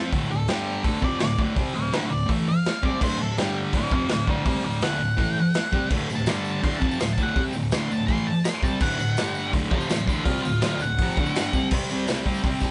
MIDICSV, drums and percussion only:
0, 0, Header, 1, 2, 480
1, 0, Start_track
1, 0, Tempo, 361664
1, 169, Time_signature, 4, 2, 24, 8
1, 16867, End_track
2, 0, Start_track
2, 0, Title_t, "Drums"
2, 163, Note_on_c, 9, 46, 60
2, 166, Note_on_c, 9, 36, 109
2, 296, Note_off_c, 9, 46, 0
2, 299, Note_off_c, 9, 36, 0
2, 633, Note_on_c, 9, 46, 61
2, 647, Note_on_c, 9, 38, 110
2, 765, Note_off_c, 9, 46, 0
2, 780, Note_off_c, 9, 38, 0
2, 1120, Note_on_c, 9, 36, 114
2, 1120, Note_on_c, 9, 46, 64
2, 1253, Note_off_c, 9, 36, 0
2, 1253, Note_off_c, 9, 46, 0
2, 1358, Note_on_c, 9, 36, 105
2, 1491, Note_off_c, 9, 36, 0
2, 1585, Note_on_c, 9, 46, 66
2, 1599, Note_on_c, 9, 38, 110
2, 1717, Note_off_c, 9, 46, 0
2, 1732, Note_off_c, 9, 38, 0
2, 1839, Note_on_c, 9, 36, 107
2, 1972, Note_off_c, 9, 36, 0
2, 2073, Note_on_c, 9, 46, 73
2, 2077, Note_on_c, 9, 36, 111
2, 2205, Note_off_c, 9, 46, 0
2, 2210, Note_off_c, 9, 36, 0
2, 2556, Note_on_c, 9, 46, 70
2, 2570, Note_on_c, 9, 38, 115
2, 2688, Note_off_c, 9, 46, 0
2, 2703, Note_off_c, 9, 38, 0
2, 3039, Note_on_c, 9, 36, 111
2, 3045, Note_on_c, 9, 46, 68
2, 3172, Note_off_c, 9, 36, 0
2, 3178, Note_off_c, 9, 46, 0
2, 3521, Note_on_c, 9, 46, 59
2, 3536, Note_on_c, 9, 38, 112
2, 3654, Note_off_c, 9, 46, 0
2, 3669, Note_off_c, 9, 38, 0
2, 3760, Note_on_c, 9, 36, 110
2, 3893, Note_off_c, 9, 36, 0
2, 3998, Note_on_c, 9, 36, 119
2, 4004, Note_on_c, 9, 49, 113
2, 4131, Note_off_c, 9, 36, 0
2, 4136, Note_off_c, 9, 49, 0
2, 4477, Note_on_c, 9, 46, 65
2, 4491, Note_on_c, 9, 38, 115
2, 4609, Note_off_c, 9, 46, 0
2, 4624, Note_off_c, 9, 38, 0
2, 4953, Note_on_c, 9, 36, 103
2, 4955, Note_on_c, 9, 46, 66
2, 5086, Note_off_c, 9, 36, 0
2, 5088, Note_off_c, 9, 46, 0
2, 5195, Note_on_c, 9, 36, 115
2, 5328, Note_off_c, 9, 36, 0
2, 5422, Note_on_c, 9, 46, 64
2, 5436, Note_on_c, 9, 38, 111
2, 5554, Note_off_c, 9, 46, 0
2, 5569, Note_off_c, 9, 38, 0
2, 5673, Note_on_c, 9, 36, 112
2, 5806, Note_off_c, 9, 36, 0
2, 5915, Note_on_c, 9, 46, 76
2, 5916, Note_on_c, 9, 36, 115
2, 6048, Note_off_c, 9, 46, 0
2, 6049, Note_off_c, 9, 36, 0
2, 6390, Note_on_c, 9, 46, 66
2, 6405, Note_on_c, 9, 38, 118
2, 6523, Note_off_c, 9, 46, 0
2, 6537, Note_off_c, 9, 38, 0
2, 6876, Note_on_c, 9, 36, 103
2, 6880, Note_on_c, 9, 46, 71
2, 7009, Note_off_c, 9, 36, 0
2, 7013, Note_off_c, 9, 46, 0
2, 7354, Note_on_c, 9, 46, 64
2, 7368, Note_on_c, 9, 38, 109
2, 7486, Note_off_c, 9, 46, 0
2, 7501, Note_off_c, 9, 38, 0
2, 7601, Note_on_c, 9, 36, 109
2, 7734, Note_off_c, 9, 36, 0
2, 7836, Note_on_c, 9, 49, 109
2, 7841, Note_on_c, 9, 36, 117
2, 7967, Note_on_c, 9, 54, 28
2, 7969, Note_off_c, 9, 49, 0
2, 7973, Note_off_c, 9, 36, 0
2, 8090, Note_off_c, 9, 54, 0
2, 8090, Note_on_c, 9, 54, 80
2, 8218, Note_off_c, 9, 54, 0
2, 8218, Note_on_c, 9, 54, 29
2, 8309, Note_on_c, 9, 46, 57
2, 8310, Note_off_c, 9, 54, 0
2, 8310, Note_on_c, 9, 54, 103
2, 8324, Note_on_c, 9, 38, 115
2, 8442, Note_off_c, 9, 46, 0
2, 8443, Note_off_c, 9, 54, 0
2, 8457, Note_off_c, 9, 38, 0
2, 8556, Note_on_c, 9, 54, 80
2, 8688, Note_off_c, 9, 54, 0
2, 8805, Note_on_c, 9, 46, 60
2, 8808, Note_on_c, 9, 36, 112
2, 8808, Note_on_c, 9, 54, 29
2, 8938, Note_off_c, 9, 46, 0
2, 8940, Note_off_c, 9, 36, 0
2, 8941, Note_off_c, 9, 54, 0
2, 8941, Note_on_c, 9, 54, 29
2, 9050, Note_on_c, 9, 36, 105
2, 9074, Note_off_c, 9, 54, 0
2, 9176, Note_on_c, 9, 54, 74
2, 9182, Note_off_c, 9, 36, 0
2, 9285, Note_on_c, 9, 46, 61
2, 9294, Note_off_c, 9, 54, 0
2, 9294, Note_on_c, 9, 54, 99
2, 9300, Note_on_c, 9, 38, 107
2, 9414, Note_off_c, 9, 54, 0
2, 9414, Note_on_c, 9, 54, 28
2, 9418, Note_off_c, 9, 46, 0
2, 9433, Note_off_c, 9, 38, 0
2, 9526, Note_off_c, 9, 54, 0
2, 9526, Note_on_c, 9, 54, 78
2, 9527, Note_on_c, 9, 36, 112
2, 9644, Note_off_c, 9, 54, 0
2, 9644, Note_on_c, 9, 54, 29
2, 9660, Note_off_c, 9, 36, 0
2, 9768, Note_on_c, 9, 36, 112
2, 9772, Note_on_c, 9, 46, 70
2, 9777, Note_off_c, 9, 54, 0
2, 9889, Note_on_c, 9, 54, 29
2, 9901, Note_off_c, 9, 36, 0
2, 9905, Note_off_c, 9, 46, 0
2, 9993, Note_off_c, 9, 54, 0
2, 9993, Note_on_c, 9, 54, 77
2, 10125, Note_off_c, 9, 54, 0
2, 10134, Note_on_c, 9, 54, 27
2, 10236, Note_on_c, 9, 46, 70
2, 10240, Note_off_c, 9, 54, 0
2, 10240, Note_on_c, 9, 54, 99
2, 10250, Note_on_c, 9, 38, 116
2, 10368, Note_off_c, 9, 46, 0
2, 10372, Note_off_c, 9, 54, 0
2, 10383, Note_off_c, 9, 38, 0
2, 10501, Note_on_c, 9, 54, 72
2, 10633, Note_off_c, 9, 54, 0
2, 10727, Note_on_c, 9, 46, 72
2, 10729, Note_on_c, 9, 36, 116
2, 10731, Note_on_c, 9, 54, 29
2, 10847, Note_off_c, 9, 54, 0
2, 10847, Note_on_c, 9, 54, 28
2, 10859, Note_off_c, 9, 46, 0
2, 10862, Note_off_c, 9, 36, 0
2, 10980, Note_off_c, 9, 54, 0
2, 11204, Note_on_c, 9, 46, 68
2, 11219, Note_on_c, 9, 38, 110
2, 11219, Note_on_c, 9, 54, 106
2, 11337, Note_off_c, 9, 46, 0
2, 11351, Note_off_c, 9, 38, 0
2, 11352, Note_off_c, 9, 54, 0
2, 11448, Note_on_c, 9, 36, 117
2, 11477, Note_on_c, 9, 54, 79
2, 11581, Note_off_c, 9, 36, 0
2, 11582, Note_off_c, 9, 54, 0
2, 11582, Note_on_c, 9, 54, 27
2, 11687, Note_on_c, 9, 49, 113
2, 11690, Note_on_c, 9, 36, 116
2, 11715, Note_off_c, 9, 54, 0
2, 11810, Note_on_c, 9, 54, 28
2, 11819, Note_off_c, 9, 49, 0
2, 11823, Note_off_c, 9, 36, 0
2, 11932, Note_off_c, 9, 54, 0
2, 11932, Note_on_c, 9, 54, 80
2, 12053, Note_off_c, 9, 54, 0
2, 12053, Note_on_c, 9, 54, 29
2, 12168, Note_off_c, 9, 54, 0
2, 12168, Note_on_c, 9, 54, 107
2, 12170, Note_on_c, 9, 46, 64
2, 12184, Note_on_c, 9, 38, 113
2, 12300, Note_off_c, 9, 54, 0
2, 12303, Note_off_c, 9, 46, 0
2, 12317, Note_off_c, 9, 38, 0
2, 12407, Note_on_c, 9, 54, 76
2, 12540, Note_off_c, 9, 54, 0
2, 12650, Note_on_c, 9, 46, 60
2, 12652, Note_on_c, 9, 36, 113
2, 12652, Note_on_c, 9, 54, 32
2, 12776, Note_off_c, 9, 54, 0
2, 12776, Note_on_c, 9, 54, 31
2, 12783, Note_off_c, 9, 46, 0
2, 12785, Note_off_c, 9, 36, 0
2, 12891, Note_on_c, 9, 36, 105
2, 12909, Note_off_c, 9, 54, 0
2, 13011, Note_on_c, 9, 54, 83
2, 13024, Note_off_c, 9, 36, 0
2, 13132, Note_off_c, 9, 54, 0
2, 13132, Note_on_c, 9, 54, 109
2, 13133, Note_on_c, 9, 46, 57
2, 13147, Note_on_c, 9, 38, 115
2, 13255, Note_off_c, 9, 54, 0
2, 13255, Note_on_c, 9, 54, 31
2, 13265, Note_off_c, 9, 46, 0
2, 13280, Note_off_c, 9, 38, 0
2, 13372, Note_on_c, 9, 36, 107
2, 13388, Note_off_c, 9, 54, 0
2, 13388, Note_on_c, 9, 54, 79
2, 13505, Note_off_c, 9, 36, 0
2, 13516, Note_off_c, 9, 54, 0
2, 13516, Note_on_c, 9, 54, 32
2, 13610, Note_on_c, 9, 36, 124
2, 13613, Note_on_c, 9, 46, 67
2, 13630, Note_off_c, 9, 54, 0
2, 13630, Note_on_c, 9, 54, 29
2, 13743, Note_off_c, 9, 36, 0
2, 13746, Note_off_c, 9, 46, 0
2, 13762, Note_off_c, 9, 54, 0
2, 13869, Note_on_c, 9, 54, 86
2, 13989, Note_off_c, 9, 54, 0
2, 13989, Note_on_c, 9, 54, 30
2, 14083, Note_on_c, 9, 46, 62
2, 14097, Note_on_c, 9, 38, 115
2, 14100, Note_off_c, 9, 54, 0
2, 14100, Note_on_c, 9, 54, 104
2, 14215, Note_off_c, 9, 46, 0
2, 14230, Note_off_c, 9, 38, 0
2, 14233, Note_off_c, 9, 54, 0
2, 14325, Note_on_c, 9, 54, 81
2, 14448, Note_off_c, 9, 54, 0
2, 14448, Note_on_c, 9, 54, 34
2, 14576, Note_on_c, 9, 46, 69
2, 14581, Note_off_c, 9, 54, 0
2, 14582, Note_on_c, 9, 36, 110
2, 14591, Note_on_c, 9, 54, 31
2, 14686, Note_off_c, 9, 54, 0
2, 14686, Note_on_c, 9, 54, 31
2, 14709, Note_off_c, 9, 46, 0
2, 14715, Note_off_c, 9, 36, 0
2, 14815, Note_off_c, 9, 54, 0
2, 14815, Note_on_c, 9, 54, 34
2, 14828, Note_on_c, 9, 36, 112
2, 14940, Note_off_c, 9, 54, 0
2, 14940, Note_on_c, 9, 54, 88
2, 14961, Note_off_c, 9, 36, 0
2, 15068, Note_on_c, 9, 46, 67
2, 15071, Note_off_c, 9, 54, 0
2, 15071, Note_on_c, 9, 54, 110
2, 15083, Note_on_c, 9, 38, 114
2, 15201, Note_off_c, 9, 46, 0
2, 15203, Note_off_c, 9, 54, 0
2, 15215, Note_off_c, 9, 38, 0
2, 15304, Note_on_c, 9, 54, 82
2, 15307, Note_on_c, 9, 36, 105
2, 15437, Note_off_c, 9, 54, 0
2, 15440, Note_off_c, 9, 36, 0
2, 15539, Note_on_c, 9, 49, 126
2, 15550, Note_on_c, 9, 36, 122
2, 15555, Note_on_c, 9, 54, 25
2, 15671, Note_off_c, 9, 49, 0
2, 15682, Note_off_c, 9, 36, 0
2, 15688, Note_off_c, 9, 54, 0
2, 15771, Note_on_c, 9, 54, 67
2, 15780, Note_on_c, 9, 46, 68
2, 15904, Note_off_c, 9, 54, 0
2, 15913, Note_off_c, 9, 46, 0
2, 16023, Note_on_c, 9, 54, 89
2, 16026, Note_on_c, 9, 46, 86
2, 16040, Note_on_c, 9, 38, 118
2, 16147, Note_off_c, 9, 54, 0
2, 16147, Note_on_c, 9, 54, 26
2, 16158, Note_off_c, 9, 46, 0
2, 16173, Note_off_c, 9, 38, 0
2, 16270, Note_on_c, 9, 36, 84
2, 16271, Note_on_c, 9, 46, 64
2, 16279, Note_off_c, 9, 54, 0
2, 16380, Note_on_c, 9, 54, 75
2, 16402, Note_off_c, 9, 36, 0
2, 16404, Note_off_c, 9, 46, 0
2, 16506, Note_on_c, 9, 46, 79
2, 16507, Note_on_c, 9, 36, 117
2, 16512, Note_off_c, 9, 54, 0
2, 16619, Note_on_c, 9, 54, 28
2, 16638, Note_off_c, 9, 46, 0
2, 16639, Note_off_c, 9, 36, 0
2, 16726, Note_off_c, 9, 54, 0
2, 16726, Note_on_c, 9, 54, 81
2, 16744, Note_on_c, 9, 36, 84
2, 16747, Note_on_c, 9, 46, 65
2, 16859, Note_off_c, 9, 54, 0
2, 16867, Note_off_c, 9, 36, 0
2, 16867, Note_off_c, 9, 46, 0
2, 16867, End_track
0, 0, End_of_file